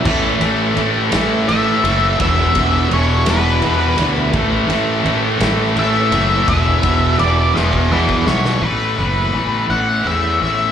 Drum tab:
CC |x-----------|------------|------------|------------|
RD |--x-x-x-x-x-|x-x-x-x-x-x-|x-x-x-x-x-x-|x-x-x-------|
SD |------o-----|------o-----|------o-----|------o---oo|
BD |o-----------|o-o---------|o-----------|o-o----o-o--|

CC |------------|
RD |------------|
SD |------------|
BD |------------|